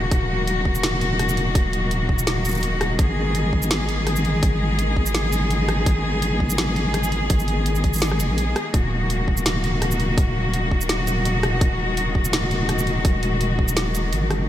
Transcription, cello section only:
0.00 8.70 D#3 medium
0.00 2.95 F#3 medium
0.00 2.95 A#3 medium
0.00 2.95 F#4 medium
2.99 8.70 G#3 medium
2.99 8.70 B3 medium
2.99 8.70 G#4 medium
8.74 14.49 D#3 medium
8.74 14.45 F#3 medium
8.74 11.58 A#3 medium
8.74 14.45 F#4 medium
11.61 14.46 G#3 medium

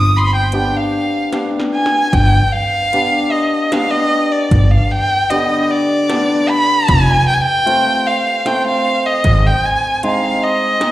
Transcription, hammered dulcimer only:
0.53 0.93 B3 medium
0.53 0.93 D4 medium
0.53 0.93 G4 medium
1.32 1.73 B3 soft
1.32 1.73 D4 medium
1.32 1.73 G4 medium
2.93 3.33 B3 medium
2.93 3.33 D4 medium
2.93 3.33 G4 medium
3.72 4.12 B3 medium
3.72 4.13 D4 medium
3.72 4.13 G4 medium
5.30 6.94 D3 medium
5.30 5.70 B3 medium
5.30 5.71 G4 medium
6.09 6.49 B3 medium
6.09 6.49 D4 medium
6.09 6.50 G4 medium
7.66 8.06 A3 medium
7.66 8.07 C4 medium
7.66 8.07 F4 medium
8.45 8.85 A3 medium
8.45 8.85 C4 medium
8.45 8.85 F4 medium
10.03 10.78 G#3 medium
10.03 10.43 C4 medium
10.03 10.43 D#4 medium
10.80 10.92 G#3 medium
10.80 10.92 C4 soft
10.80 10.92 D#4 medium

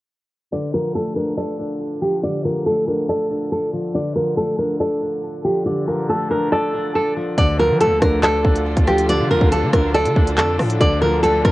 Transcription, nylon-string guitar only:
0.52 0.70 D5 medium
0.74 0.91 A#4 medium
0.95 1.13 A4 medium
1.16 1.34 A#4 medium
1.37 1.98 A4 medium
2.02 2.20 G4 medium
2.24 2.41 D5 medium
2.45 2.63 A#4 medium
2.66 2.84 A4 medium
2.88 3.05 A#4 medium
3.09 3.49 A4 medium
3.52 3.70 A4 medium
3.95 4.13 D5 medium
4.16 4.34 A#4 medium
4.37 4.55 A4 medium
4.59 4.77 A#4 medium
4.80 5.41 A4 medium
5.45 5.62 G4 medium
5.66 5.84 D5 medium
5.88 6.05 A#4 medium
6.09 6.27 A4 medium
6.31 6.48 A#4 medium
6.52 6.92 A4 medium
6.95 7.13 A4 medium
7.38 7.55 D5 loud
7.59 7.77 A#4 medium
7.81 7.98 A4 medium
8.02 8.20 A#4 medium
8.23 8.84 A4 loud
8.87 9.05 G4 medium
9.09 9.27 D5 loud
9.31 9.48 A#4 medium
9.52 9.70 A4 medium
9.73 9.91 A#4 medium
9.94 10.35 A4 medium
10.38 10.55 A4 medium
10.80 10.98 D5 medium
11.02 11.20 A#4 medium
11.23 11.41 A4 medium
11.45 11.52 A#4 medium

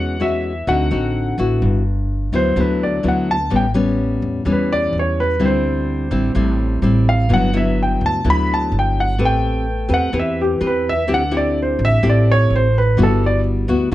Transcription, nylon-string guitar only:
0.00 0.65 E3 soft
0.00 0.17 G#3 medium
0.00 0.17 C#4 medium
0.00 0.17 F#4 medium
0.20 0.52 G#3 soft
0.20 0.52 C#4 soft
0.20 0.52 F#4 soft
0.67 1.60 D3 medium
0.67 0.87 C4 medium
0.67 0.88 D#4 medium
0.67 0.88 F#4 medium
0.91 1.34 C4 medium
0.91 1.35 D#4 soft
0.91 1.35 F#4 medium
1.38 1.82 B3 medium
1.38 1.82 E4 medium
1.38 1.82 F#4 medium
1.62 2.54 G2 medium
2.33 2.53 F#3 medium
2.33 2.53 B3 medium
2.33 2.53 E4 medium
2.56 3.49 D3 medium
2.56 3.00 F#3 medium
2.56 3.00 B3 medium
2.56 3.00 E4 medium
3.03 3.35 F#3 medium
3.03 3.36 B3 soft
3.03 3.36 E4 medium
3.50 4.43 A2 medium
3.50 3.65 G3 medium
3.50 3.65 B3 soft
3.50 3.65 C#4 medium
3.74 4.42 G3 medium
3.74 4.42 B3 medium
3.74 4.42 C#4 medium
4.45 5.38 E3 medium
4.45 5.36 G3 medium
4.45 5.37 B3 medium
4.45 5.37 C#4 medium
5.39 6.32 D3 medium
5.39 6.07 G3 medium
5.39 6.07 C4 medium
5.39 6.08 E4 medium
6.11 6.31 G3 medium
6.11 6.31 C4 medium
6.11 6.31 E4 medium
6.35 7.28 A2 medium
6.35 6.79 G3 medium
6.35 6.79 C4 medium
6.35 6.79 E4 medium
6.82 7.28 G3 soft
6.82 7.28 C4 medium
6.82 7.28 E4 medium
7.29 8.22 G2 medium
7.29 7.49 F#3 medium
7.29 7.50 B3 medium
7.29 7.50 E4 medium
7.53 8.21 F#3 medium
7.53 8.21 B3 medium
7.53 8.21 E4 medium
8.24 9.17 D3 medium
8.24 9.15 F#3 medium
8.24 9.16 B3 medium
8.24 9.16 E4 medium
9.18 10.11 A3 medium
9.18 9.66 C4 medium
9.18 9.66 G4 medium
9.18 9.66 B4 medium
9.89 10.09 C4 medium
9.89 10.10 G4 medium
9.89 10.10 B4 medium
10.13 11.06 E3 medium
10.13 10.57 C4 medium
10.13 10.57 G4 medium
10.13 10.57 B4 medium
10.61 10.93 C4 medium
10.61 10.93 G4 medium
10.61 10.93 B4 medium
11.07 12.00 D3 medium
11.07 11.22 C4 medium
11.07 11.22 E4 medium
11.07 11.22 G4 medium
11.31 11.99 C4 medium
11.31 11.99 E4 medium
11.31 11.99 G4 medium
12.03 12.95 A2 medium
12.03 12.66 C4 medium
12.03 12.67 E4 medium
12.03 12.67 G4 medium
12.98 13.90 G3 medium
12.98 13.65 B3 medium
12.98 13.65 E4 medium
12.98 13.65 F#4 medium
13.69 13.88 B3 medium
13.69 13.89 E4 medium
13.69 13.89 F#4 medium
13.91 13.95 D3 medium

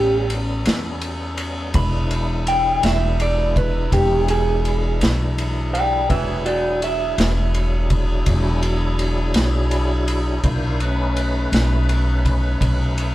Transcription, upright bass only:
0.00 0.62 A1 loud
0.66 1.71 E2 medium
1.75 2.80 E1 loud
2.84 3.88 E1 loud
3.92 4.97 E1 loud
5.01 6.05 B1 medium
6.10 7.14 E1 medium
7.18 8.23 E1 medium
8.27 9.32 E1 loud
9.35 10.40 B1 medium
10.44 11.49 B1 medium
11.52 12.57 B1 loud
12.61 13.15 B1 medium

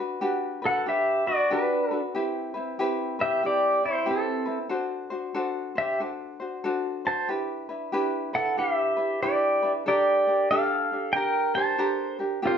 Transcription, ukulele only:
0.00 0.20 D4 soft
0.00 0.21 F#4 soft
0.00 0.21 B4 medium
0.21 0.62 D4 medium
0.21 0.62 F#4 medium
0.21 0.62 G4 medium
0.21 0.61 B4 medium
0.62 0.86 D4 soft
0.62 0.86 F#4 soft
0.62 0.86 B4 medium
0.86 1.27 D4 medium
0.86 1.27 G4 medium
0.86 1.25 B4 medium
1.26 1.50 D4 soft
1.26 1.50 F#4 soft
1.26 1.50 B4 soft
1.50 1.91 D4 medium
1.50 1.91 F#4 medium
1.50 1.91 G4 medium
1.50 1.90 B4 medium
1.91 2.15 D4 soft
1.91 2.15 F#4 medium
1.91 2.15 B4 medium
2.15 2.55 C4 medium
2.15 2.54 E4 medium
2.15 2.55 G4 medium
2.15 2.53 B4 medium
2.54 2.78 C4 soft
2.54 2.79 E4 soft
2.54 2.78 B4 medium
2.79 3.20 C4 medium
2.79 3.19 E4 medium
2.79 3.19 G4 medium
2.79 3.18 B4 medium
3.19 3.43 C4 soft
3.19 3.43 E4 soft
3.19 3.43 B4 soft
3.43 3.83 C4 medium
3.43 3.82 E4 medium
3.43 3.83 G4 medium
3.43 3.85 B4 medium
3.83 4.05 C4 soft
3.83 4.05 E4 soft
4.06 4.47 C4 medium
4.06 4.46 E4 medium
4.06 4.47 G4 medium
4.06 4.44 B4 medium
4.46 4.69 C4 soft
4.46 4.70 E4 soft
4.46 4.70 B4 soft
4.69 5.11 D4 medium
4.69 5.10 F#4 medium
4.69 5.11 A4 medium
4.69 5.09 C5 medium
5.10 5.33 D4 soft
5.10 5.34 F#4 soft
5.10 5.35 C5 medium
5.34 5.76 D4 medium
5.34 5.76 F#4 medium
5.34 5.75 A4 medium
5.34 5.74 C5 medium
5.75 5.99 D4 soft
5.75 5.99 C5 medium
6.00 6.41 D4 medium
6.00 6.40 F#4 medium
6.00 6.41 A4 medium
6.00 6.39 C5 medium
6.40 6.64 D4 soft
6.40 6.64 F#4 soft
6.40 6.64 C5 medium
6.64 7.05 D4 medium
6.64 7.04 F#4 medium
6.64 7.05 A4 medium
6.64 7.04 C5 medium
7.05 7.28 D4 soft
7.05 7.29 F#4 soft
7.05 7.29 C5 soft
7.29 7.69 D4 medium
7.29 7.68 E4 medium
7.29 7.69 G4 medium
7.29 7.68 B4 medium
7.69 7.92 D4 soft
7.69 7.92 E4 soft
7.69 7.93 B4 medium
7.92 8.33 D4 medium
7.92 8.33 E4 loud
7.92 8.33 G4 medium
7.92 8.32 B4 medium
8.33 8.57 D4 soft
8.33 8.57 E4 soft
8.33 8.57 B4 soft
8.57 8.98 D4 medium
8.57 8.97 E4 medium
8.57 8.98 G4 medium
8.57 8.95 B4 medium
8.97 9.22 D4 soft
8.97 9.21 E4 soft
8.97 9.21 B4 soft
9.22 9.63 D4 medium
9.22 9.63 E4 medium
9.22 9.63 G4 medium
9.22 9.61 B4 medium
9.62 9.85 D4 soft
9.62 9.87 E4 soft
9.62 9.86 B4 medium
9.86 10.27 D4 medium
9.86 10.27 G4 medium
9.86 10.27 A4 medium
9.86 10.26 A#4 medium
10.27 10.50 D4 soft
10.27 10.51 G4 soft
10.27 10.51 A#4 soft
10.51 10.92 D4 medium
10.51 10.91 G4 medium
10.51 10.91 A4 medium
10.92 11.14 D4 soft
10.92 11.15 G4 soft
11.15 11.56 D4 medium
11.15 11.54 G4 medium
11.15 11.53 A#4 medium
11.54 11.77 D4 soft
11.54 11.78 G4 soft
11.54 11.78 A#4 soft
11.78 12.19 D4 medium
11.78 12.19 G4 medium
11.78 12.19 A4 medium
11.78 12.18 A#4 medium
12.19 12.42 D4 soft
12.19 12.41 G4 soft
12.19 12.42 A#4 medium
12.42 12.58 C4 medium
12.42 12.58 F4 medium
12.42 12.58 G4 medium
12.42 12.58 A#4 medium

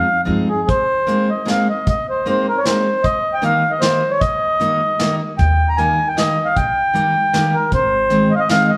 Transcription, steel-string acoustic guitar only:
0.25 0.47 F3 medium
0.25 0.47 G#3 medium
0.25 0.47 C4 medium
0.25 0.47 D#4 medium
1.07 1.28 G#3 medium
1.07 1.28 A#3 medium
1.07 1.28 C4 soft
1.07 1.28 D#4 soft
1.45 1.67 G#3 soft
1.45 1.67 A#3 soft
1.45 1.67 C4 soft
1.45 1.67 D#4 medium
2.26 2.47 G#3 soft
2.26 2.46 A#3 medium
2.26 2.46 C4 soft
2.26 2.46 D#4 medium
2.66 2.86 G#3 medium
2.66 2.86 A#3 soft
2.66 2.86 C4 soft
2.66 2.86 D#4 medium
3.42 3.63 D#3 medium
3.42 3.63 G3 soft
3.42 3.63 A#3 medium
3.42 3.63 D#4 medium
3.81 4.02 D#3 soft
3.81 4.02 G3 medium
3.81 4.02 A#3 medium
3.81 4.02 D#4 soft
4.60 4.80 D#3 medium
4.60 4.81 G3 medium
4.60 4.80 A#3 soft
4.60 4.80 D#4 soft
4.99 5.20 D#3 medium
4.99 5.20 G3 soft
4.99 5.20 A#3 medium
4.99 5.20 D#4 medium
5.78 5.98 D#3 medium
5.78 5.99 G3 soft
5.78 5.98 A#3 soft
5.78 5.98 D#4 soft
6.17 6.37 D#3 medium
6.17 6.37 G3 soft
6.17 6.37 A#3 soft
6.17 6.37 D#4 soft
6.94 7.14 D#3 medium
6.94 7.14 G3 medium
6.94 7.14 A#3 soft
6.94 7.14 D#4 medium
7.33 7.53 D#3 medium
7.33 7.54 G3 soft
7.33 7.54 A#3 medium
7.33 7.53 D#4 medium
8.10 8.30 D#3 medium
8.10 8.30 G#3 soft
8.10 8.30 C4 soft
8.10 8.30 D#4 medium
8.49 8.70 D#3 medium
8.49 8.70 G#3 soft
8.49 8.70 C4 soft
8.49 8.69 D#4 medium

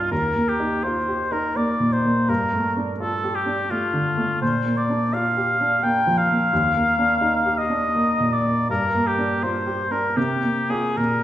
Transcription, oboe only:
0.00 0.11 F4 soft
0.11 0.50 A#4 soft
0.48 0.85 G4 soft
0.83 1.34 C5 soft
1.32 1.58 A#4 soft
1.56 1.94 D5 soft
1.92 2.30 C5 soft
2.29 2.76 A#4 soft
2.99 3.37 A4 soft
3.35 3.72 G4 soft
3.70 4.41 F4 soft
4.42 4.79 C5 medium
4.77 5.15 D5 soft
5.13 5.84 F5 medium
5.83 6.19 G5 medium
6.17 7.60 F5 medium
7.58 8.34 D#5 medium
8.32 8.69 D5 medium
8.70 9.08 A#4 medium
9.07 9.44 G4 soft
9.43 9.93 C5 medium
9.92 10.18 A#4 soft
10.17 10.71 G4 soft
10.70 10.98 G#4 soft
10.97 11.23 A#4 soft

